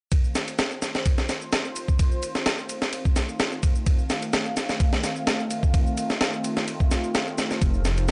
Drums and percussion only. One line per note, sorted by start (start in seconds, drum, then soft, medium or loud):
0.12 kick loud
0.12 ride medium
0.12 shaker soft
0.24 shaker soft
0.35 snare medium
0.35 ride medium
0.35 shaker medium
0.48 ride soft
0.48 shaker soft
0.59 snare loud
0.59 ride medium
0.59 shaker soft
0.71 shaker soft
0.82 snare soft
0.82 ride medium
0.82 shaker medium
0.95 snare soft
0.95 shaker soft
1.06 kick loud
1.06 ride medium
1.06 shaker soft
1.18 snare soft
1.18 shaker soft
1.29 snare soft
1.29 ride medium
1.29 shaker medium
1.41 shaker soft
1.52 snare loud
1.52 ride medium
1.52 shaker soft
1.65 shaker soft
1.76 ride medium
1.76 shaker medium
1.88 kick medium
1.88 shaker soft
1.99 kick loud
1.99 ride medium
1.99 shaker soft
2.12 shaker soft
2.22 ride medium
2.22 shaker medium
2.35 snare soft
2.35 shaker soft
2.46 snare loud
2.46 ride medium
2.46 shaker soft
2.58 shaker soft
2.69 ride medium
2.69 shaker medium
2.82 snare medium
2.82 shaker soft
2.93 ride medium
2.93 shaker soft
3.05 kick medium
3.05 shaker soft
3.16 snare soft
3.16 ride medium
3.16 shaker medium
3.29 shaker soft
3.40 snare loud
3.40 ride medium
3.40 shaker soft
3.52 shaker soft
3.63 kick loud
3.63 ride medium
3.63 shaker medium
3.75 shaker soft
3.86 kick loud
3.86 ride medium
3.86 shaker soft
3.99 shaker soft
4.10 snare soft
4.10 ride medium
4.10 shaker medium
4.22 ride soft
4.22 shaker soft
4.33 snare loud
4.33 ride medium
4.33 shaker soft
4.46 shaker soft
4.57 snare soft
4.57 ride medium
4.57 shaker medium
4.69 snare soft
4.69 shaker soft
4.80 kick loud
4.80 ride medium
4.80 shaker soft
4.93 snare soft
4.93 shaker soft
5.04 snare soft
5.04 ride medium
5.04 shaker medium
5.16 shaker soft
5.27 snare loud
5.27 ride medium
5.27 shaker soft
5.40 shaker soft
5.51 ride medium
5.51 shaker medium
5.63 kick medium
5.63 shaker soft
5.74 kick loud
5.74 ride medium
5.74 shaker soft
5.87 shaker soft
5.97 ride medium
5.97 shaker medium
6.10 snare soft
6.10 shaker soft
6.21 snare loud
6.21 ride medium
6.21 shaker soft
6.33 shaker soft
6.44 ride medium
6.44 shaker medium
6.57 snare medium
6.57 shaker soft
6.68 ride medium
6.68 shaker soft
6.80 kick medium
6.80 shaker soft
6.91 snare soft
6.91 ride medium
6.91 shaker medium
7.04 shaker soft
7.15 snare loud
7.15 ride medium
7.15 shaker soft
7.27 shaker soft
7.38 snare soft
7.38 ride medium
7.38 shaker medium
7.51 snare soft
7.51 shaker soft
7.61 kick loud
7.61 ride medium
7.61 shaker soft
7.74 shaker soft
7.85 snare soft
7.85 ride medium
7.85 shaker medium
7.97 ride soft
7.97 shaker soft
8.08 shaker soft